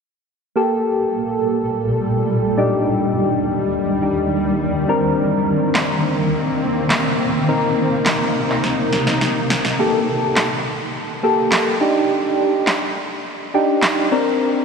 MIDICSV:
0, 0, Header, 1, 4, 480
1, 0, Start_track
1, 0, Key_signature, -2, "minor"
1, 0, Tempo, 576923
1, 467, Time_signature, 4, 2, 24, 8
1, 12186, End_track
2, 0, Start_track
2, 0, Title_t, "Synth keys"
2, 0, Program_c, 0, 88
2, 463, Note_on_c, 0, 58, 71
2, 467, Note_on_c, 0, 67, 65
2, 472, Note_on_c, 0, 69, 75
2, 2112, Note_off_c, 0, 58, 0
2, 2114, Note_off_c, 0, 67, 0
2, 2116, Note_off_c, 0, 69, 0
2, 2143, Note_on_c, 0, 62, 72
2, 2147, Note_on_c, 0, 63, 63
2, 2151, Note_on_c, 0, 67, 80
2, 3321, Note_off_c, 0, 62, 0
2, 3323, Note_off_c, 0, 63, 0
2, 3325, Note_off_c, 0, 67, 0
2, 3345, Note_on_c, 0, 62, 50
2, 3347, Note_on_c, 0, 63, 48
2, 3350, Note_on_c, 0, 67, 57
2, 4057, Note_off_c, 0, 62, 0
2, 4063, Note_on_c, 0, 60, 72
2, 4067, Note_off_c, 0, 63, 0
2, 4067, Note_on_c, 0, 62, 64
2, 4068, Note_off_c, 0, 67, 0
2, 4071, Note_on_c, 0, 70, 78
2, 5952, Note_off_c, 0, 60, 0
2, 5954, Note_off_c, 0, 62, 0
2, 5956, Note_off_c, 0, 70, 0
2, 6223, Note_on_c, 0, 60, 69
2, 6227, Note_on_c, 0, 63, 64
2, 6231, Note_on_c, 0, 70, 83
2, 8112, Note_off_c, 0, 60, 0
2, 8114, Note_off_c, 0, 63, 0
2, 8116, Note_off_c, 0, 70, 0
2, 8147, Note_on_c, 0, 58, 78
2, 8148, Note_on_c, 0, 67, 70
2, 8150, Note_on_c, 0, 69, 84
2, 8715, Note_off_c, 0, 58, 0
2, 8716, Note_off_c, 0, 67, 0
2, 8717, Note_off_c, 0, 69, 0
2, 9345, Note_on_c, 0, 58, 76
2, 9347, Note_on_c, 0, 67, 73
2, 9349, Note_on_c, 0, 69, 88
2, 9772, Note_off_c, 0, 58, 0
2, 9773, Note_off_c, 0, 67, 0
2, 9774, Note_off_c, 0, 69, 0
2, 9824, Note_on_c, 0, 62, 83
2, 9826, Note_on_c, 0, 63, 75
2, 9829, Note_on_c, 0, 67, 91
2, 10594, Note_off_c, 0, 62, 0
2, 10595, Note_off_c, 0, 63, 0
2, 10596, Note_off_c, 0, 67, 0
2, 11266, Note_on_c, 0, 62, 78
2, 11268, Note_on_c, 0, 63, 73
2, 11270, Note_on_c, 0, 67, 88
2, 11693, Note_off_c, 0, 62, 0
2, 11694, Note_off_c, 0, 63, 0
2, 11695, Note_off_c, 0, 67, 0
2, 11745, Note_on_c, 0, 60, 87
2, 11748, Note_on_c, 0, 62, 74
2, 11750, Note_on_c, 0, 70, 91
2, 12186, Note_off_c, 0, 60, 0
2, 12186, Note_off_c, 0, 62, 0
2, 12186, Note_off_c, 0, 70, 0
2, 12186, End_track
3, 0, Start_track
3, 0, Title_t, "Ambient pad"
3, 0, Program_c, 1, 92
3, 468, Note_on_c, 1, 69, 85
3, 469, Note_on_c, 1, 46, 78
3, 469, Note_on_c, 1, 55, 70
3, 2131, Note_off_c, 1, 46, 0
3, 2131, Note_off_c, 1, 55, 0
3, 2131, Note_off_c, 1, 69, 0
3, 2145, Note_on_c, 1, 55, 77
3, 2146, Note_on_c, 1, 39, 75
3, 2146, Note_on_c, 1, 51, 68
3, 4047, Note_off_c, 1, 39, 0
3, 4047, Note_off_c, 1, 55, 0
3, 4068, Note_on_c, 1, 60, 78
3, 4069, Note_on_c, 1, 58, 69
3, 6193, Note_off_c, 1, 51, 0
3, 6206, Note_off_c, 1, 60, 0
3, 6228, Note_on_c, 1, 48, 77
3, 6229, Note_on_c, 1, 63, 84
3, 8115, Note_off_c, 1, 58, 0
3, 8128, Note_off_c, 1, 48, 0
3, 8129, Note_off_c, 1, 63, 0
3, 12186, End_track
4, 0, Start_track
4, 0, Title_t, "Drums"
4, 4784, Note_on_c, 9, 38, 85
4, 4786, Note_on_c, 9, 39, 106
4, 4868, Note_off_c, 9, 38, 0
4, 4869, Note_off_c, 9, 39, 0
4, 5743, Note_on_c, 9, 38, 91
4, 5745, Note_on_c, 9, 39, 107
4, 5827, Note_off_c, 9, 38, 0
4, 5828, Note_off_c, 9, 39, 0
4, 6704, Note_on_c, 9, 38, 83
4, 6706, Note_on_c, 9, 39, 103
4, 6788, Note_off_c, 9, 38, 0
4, 6789, Note_off_c, 9, 39, 0
4, 7068, Note_on_c, 9, 39, 65
4, 7151, Note_off_c, 9, 39, 0
4, 7186, Note_on_c, 9, 38, 50
4, 7270, Note_off_c, 9, 38, 0
4, 7426, Note_on_c, 9, 38, 59
4, 7509, Note_off_c, 9, 38, 0
4, 7546, Note_on_c, 9, 38, 57
4, 7629, Note_off_c, 9, 38, 0
4, 7665, Note_on_c, 9, 38, 71
4, 7749, Note_off_c, 9, 38, 0
4, 7906, Note_on_c, 9, 38, 89
4, 7989, Note_off_c, 9, 38, 0
4, 8027, Note_on_c, 9, 38, 77
4, 8110, Note_off_c, 9, 38, 0
4, 8624, Note_on_c, 9, 38, 88
4, 8625, Note_on_c, 9, 39, 106
4, 8707, Note_off_c, 9, 38, 0
4, 8708, Note_off_c, 9, 39, 0
4, 9583, Note_on_c, 9, 38, 88
4, 9584, Note_on_c, 9, 39, 105
4, 9666, Note_off_c, 9, 38, 0
4, 9667, Note_off_c, 9, 39, 0
4, 10544, Note_on_c, 9, 38, 84
4, 10545, Note_on_c, 9, 39, 109
4, 10627, Note_off_c, 9, 38, 0
4, 10628, Note_off_c, 9, 39, 0
4, 11503, Note_on_c, 9, 38, 87
4, 11504, Note_on_c, 9, 39, 105
4, 11586, Note_off_c, 9, 38, 0
4, 11587, Note_off_c, 9, 39, 0
4, 12186, End_track
0, 0, End_of_file